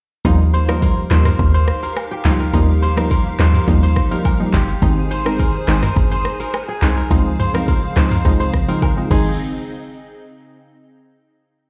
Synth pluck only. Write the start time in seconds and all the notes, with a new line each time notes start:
0.25 F3 G3 A#3 D#4
0.68 F3 G3 A#3 D#4
1.10 F3 G3 A#3 D#4
2.25 F3 G3 A#3 D#4
2.53 F3 G3 A#3 D#4
2.97 F3 G3 A#3 D#4
3.39 F3 G3 A#3 D#4
3.68 F3 G3 A#3 D#4
4.11 F3 G3 A#3 D#4
4.40 F3 G3 A#3 D#4
4.82 D#3 G#3 C4 D#4
5.25 D#3 G#3 C4 D#4
5.68 D#3 G#3 C4 D#4
6.82 D#3 G#3 C4 D#4
7.10 F3 G#3 C4 D#4
7.54 F3 G#3 C4 D#4
7.96 F3 G#3 C4 D#4
8.25 F3 G#3 C4 D#4
8.68 F3 G#3 C4 D#4
8.97 F3 G#3 C4 D#4
9.10 D#3 G#3 C4 D#4